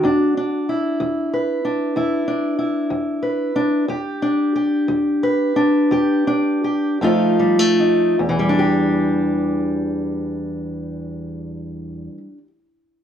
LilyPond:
\new Staff \with { instrumentName = "Steel-string acoustic guitar" } { \time 12/8 \key e \minor \tempo 4. = 56 << { <e, fis'>4 r8 e,4 r8 e,4 r8 e,4 r8 | e,4 r8 e,4 r8 e,4 r8 f,4 r8 | e,1. | } \\ { d'8 d'8 e'4 b'8 d'8 e'8 d'8 e'4 b'8 d'8 | g'8 d'8 g'4 b'8 d'8 g'8 d'8 g'8 <f a ees' f'>8 g16 a16 ees'8 | <e g d' g'>1. | } >> }